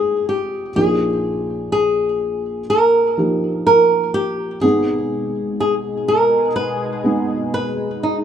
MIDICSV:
0, 0, Header, 1, 4, 480
1, 0, Start_track
1, 0, Tempo, 967742
1, 376, Time_signature, 4, 2, 24, 8
1, 4089, End_track
2, 0, Start_track
2, 0, Title_t, "Nylon-string guitar"
2, 0, Program_c, 0, 24
2, 0, Note_on_c, 0, 68, 71
2, 141, Note_off_c, 0, 68, 0
2, 143, Note_on_c, 0, 67, 63
2, 375, Note_off_c, 0, 67, 0
2, 377, Note_on_c, 0, 68, 68
2, 848, Note_off_c, 0, 68, 0
2, 854, Note_on_c, 0, 68, 75
2, 1337, Note_off_c, 0, 68, 0
2, 1339, Note_on_c, 0, 70, 79
2, 1798, Note_off_c, 0, 70, 0
2, 1818, Note_on_c, 0, 70, 82
2, 2041, Note_off_c, 0, 70, 0
2, 2054, Note_on_c, 0, 67, 72
2, 2287, Note_off_c, 0, 67, 0
2, 2289, Note_on_c, 0, 68, 79
2, 2753, Note_off_c, 0, 68, 0
2, 2780, Note_on_c, 0, 68, 74
2, 2844, Note_off_c, 0, 68, 0
2, 3017, Note_on_c, 0, 70, 75
2, 3251, Note_off_c, 0, 70, 0
2, 3253, Note_on_c, 0, 71, 79
2, 3733, Note_off_c, 0, 71, 0
2, 3739, Note_on_c, 0, 71, 83
2, 3985, Note_off_c, 0, 71, 0
2, 3985, Note_on_c, 0, 63, 63
2, 4048, Note_off_c, 0, 63, 0
2, 4089, End_track
3, 0, Start_track
3, 0, Title_t, "Analog synth pad"
3, 0, Program_c, 1, 89
3, 2287, Note_on_c, 1, 63, 63
3, 2288, Note_on_c, 1, 68, 77
3, 2289, Note_on_c, 1, 47, 71
3, 2290, Note_on_c, 1, 56, 62
3, 4089, Note_off_c, 1, 47, 0
3, 4089, Note_off_c, 1, 56, 0
3, 4089, Note_off_c, 1, 63, 0
3, 4089, Note_off_c, 1, 68, 0
3, 4089, End_track
4, 0, Start_track
4, 0, Title_t, "Felt piano"
4, 0, Program_c, 2, 0
4, 0, Control_c, 2, 64, 127
4, 0, Note_on_c, 2, 29, 46
4, 0, Note_on_c, 2, 41, 46
4, 0, Note_on_c, 2, 56, 53
4, 0, Note_on_c, 2, 60, 53
4, 0, Note_on_c, 2, 63, 51
4, 0, Note_on_c, 2, 65, 62
4, 339, Note_off_c, 2, 56, 0
4, 341, Note_off_c, 2, 60, 0
4, 342, Note_off_c, 2, 63, 0
4, 344, Note_off_c, 2, 65, 0
4, 358, Note_off_c, 2, 41, 0
4, 359, Note_off_c, 2, 29, 0
4, 374, Note_on_c, 2, 53, 55
4, 378, Note_on_c, 2, 46, 49
4, 378, Note_on_c, 2, 58, 51
4, 379, Note_on_c, 2, 34, 52
4, 380, Note_on_c, 2, 63, 50
4, 384, Control_c, 2, 64, 0
4, 384, Note_on_c, 2, 65, 61
4, 457, Control_c, 2, 64, 127
4, 1287, Note_off_c, 2, 53, 0
4, 1289, Note_off_c, 2, 58, 0
4, 1290, Note_off_c, 2, 63, 0
4, 1292, Note_off_c, 2, 65, 0
4, 1574, Note_on_c, 2, 53, 59
4, 1577, Note_on_c, 2, 58, 54
4, 1581, Note_on_c, 2, 63, 57
4, 1582, Note_on_c, 2, 67, 63
4, 2259, Note_off_c, 2, 53, 0
4, 2261, Note_off_c, 2, 58, 0
4, 2263, Note_off_c, 2, 63, 0
4, 2263, Note_off_c, 2, 67, 0
4, 2277, Note_off_c, 2, 46, 0
4, 2278, Note_off_c, 2, 34, 0
4, 2291, Note_on_c, 2, 56, 55
4, 2294, Note_on_c, 2, 32, 49
4, 2294, Note_on_c, 2, 59, 54
4, 2295, Note_on_c, 2, 44, 51
4, 2297, Note_on_c, 2, 63, 49
4, 2300, Note_on_c, 2, 68, 66
4, 2302, Control_c, 2, 64, 0
4, 2382, Control_c, 2, 64, 127
4, 3206, Note_off_c, 2, 56, 0
4, 3207, Note_off_c, 2, 59, 0
4, 3209, Note_off_c, 2, 63, 0
4, 3210, Note_off_c, 2, 68, 0
4, 3491, Note_on_c, 2, 56, 60
4, 3493, Note_on_c, 2, 59, 52
4, 3497, Note_on_c, 2, 63, 54
4, 3499, Note_on_c, 2, 68, 64
4, 4089, Note_off_c, 2, 32, 0
4, 4089, Note_off_c, 2, 44, 0
4, 4089, Note_off_c, 2, 56, 0
4, 4089, Note_off_c, 2, 59, 0
4, 4089, Note_off_c, 2, 63, 0
4, 4089, Note_off_c, 2, 68, 0
4, 4089, End_track
0, 0, End_of_file